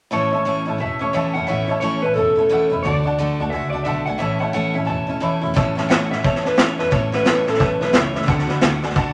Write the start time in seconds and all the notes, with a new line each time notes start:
0.11 A1 A2 E3 A3 C#4 E4 C#5 E5 A5
0.32 C#4 E4 C#5 E5 A5
0.36 A3
0.45 A2 E3 A3 C#4 E4 C#5 E5 A5
0.65 A1 A3 C#4 E4 C#5 E5 A5
0.78 E1 E3 A3 C#4 E4 C#5 E5 A5
0.99 A3 C#4 E4 C#5 E5 A5
1.13 A2 E3 A3 C#4 E4 C#5 E5 A5
1.34 E1 C#4 E4 C#5 E5 F#5 A5
1.38 A3
1.47 A1 A2 E3 A3 C#4 E4 C#5 E5 F#5
1.67 A3 C#4 E4 C#5 E5 A5
1.80 A2 E3 A3 C#4 E4 C#5 E5 A5
2.02 A1 A3 C#4 E4 B4 C#5 E5 A5
2.14 E1 E3 A3 C#4 E4 A4 C#5 E5
2.18 A5
2.36 C#4 E4 C#5 E5 A5
2.40 A3
2.49 A2 E3 A3 C#4 E4 C#5 E5 F#5
2.70 E1 A3 C#4 E4 C#5 E5 B5
2.83 D2 D3 A3 D4 F#4 D5 F#5 A5
3.03 D4 F#4 D5 F#5 A5
3.08 A3
3.18 D3 A3 D4 F#4 D5 F#5 A5
3.39 D2 A3 D4 F#4 D5 F#5 A5
3.50 C#2 D3 A3 D4 D5 E5 F#5 G#5
3.55 F#4
3.70 C#2 F#4 D5 F#5
3.74 A3 D4 A5
3.84 B1 D3 A3 D4 F#4 D5 E5 F#5 A5
4.06 B1 A3 D4 F#4 D5 F#5 G#5
4.18 A1 A2 E3 A3 C#4 E4 C#5 E5 A5
4.39 A3 C#4 E4 C#5 E5 F#5 A5
4.53 A2 E3 A3 C#4 E4 C#5 E5 F#5 A5
4.73 A1 A3 C#4 E4 C#5 E5 A5
4.85 E1 E3 A3 C#4 E4 C#5 E5 A5
4.90 G#5
5.07 A3 C#4 E4 C#5 E5 A5
5.20 A2 E3 A3 C#4 E4 C#5 E5 B5
5.41 E1 A3 C#4 E4 C#5 E5 B5
5.54 A1 A2 E3 A3 C#4 E4 C#5 E5 A5, kick, snare
5.75 A3 C#4 E4 C#5 E5 A5, snare
5.89 A2 E3 A3 C#4 E4 C#5 E5 F#5 A5, snare, hi-hat pedal
6.09 A1 A3 C#4 E4 C#5 E5 F#5, snare
6.22 E2 E3 A3 C#4 E4 C#5 E5 A5, kick, snare
6.35 snare
6.43 A3 C#4 E4 B4 C#5 E5 A5, snare
6.56 A2 E3 A3 C#4 E4 C#5 E5 A5, snare, hi-hat pedal
6.78 E2 A3 C#4 E4 B4 C#5 E5 A5, snare
6.90 A1 A2 E3 A3 C#4 E4 C#5 E5 A5, kick, snare
7.12 A3 C#4 E4 B4 C#5 E5 F#5, snare
7.24 A2 E3 A3 C#4 E4 C#5 E5 A5, snare, hi-hat pedal
7.46 A1 A3 C#4 E4 A4 C#5 E5 A5, snare
7.54 snare
7.58 B1 E3 A3 C#4 E4 B4 C#5 E5 A5, kick, snare
7.80 B1 C#4 E4 B4 C#5 E5 A5, snare
7.84 A3
7.93 C#2 A2 E3 A3 C#4 E4 C#5 E5 B5, snare, hi-hat pedal
7.97 C#5
8.13 C#2 A3 C#4 E4 C#5 E5 B5, snare
8.22 snare
8.26 D2 D3 A3 D4 F#4 D5 F#5 A5, kick, snare
8.39 snare
8.46 D2 A3 D4 F#4 D5 F#5, snare
8.50 B5
8.61 D2 D3 A3 D4 F#4 D5 F#5 G#5, snare, hi-hat pedal
8.82 D2 A3 D4 F#4 D5 F#5 G#5, snare
8.90 snare
8.95 C#2 D3 A3 D4 F#4 D5 F#5 A5, kick, snare